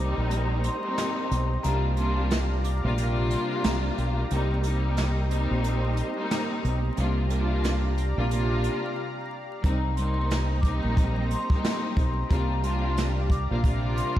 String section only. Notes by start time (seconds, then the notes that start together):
Already playing: G3 A#3
0.00 C4 D#4
0.83 G3 A#3 C4 D#4
1.63 C3 G3 A#3 D4 F4
1.95 C3 G3 A#3 D4 F4
2.83 C3 G3 A#3 D4 F4
2.96 C3 G3 A#3 D4 F4
4.29 G3 A#3 C4 D#4
4.64 G3 A#3 C4 D#4
5.30 G3 A#3 C4 D#4
6.16 G3 A#3 C4 D#4
6.96 C3 G3 A#3 D4 F4
7.28 C3 G3 A#3 D4 F4
8.16 C3 G3 A#3 D4 F4
8.29 C3 G3 A#3 D4 F4
9.62 G3 A#3 C4 D#4
9.98 G3 A#3 C4 D#4
10.63 G3 A#3 C4 D#4
11.50 G3 A#3 C4 D#4
12.30 C3 G3 A#3 D4 F4
12.62 C3 G3 A#3 D4 F4
13.50 C3 G3 A#3 D4 F4
13.63 C3 G3 A#3 D4 F4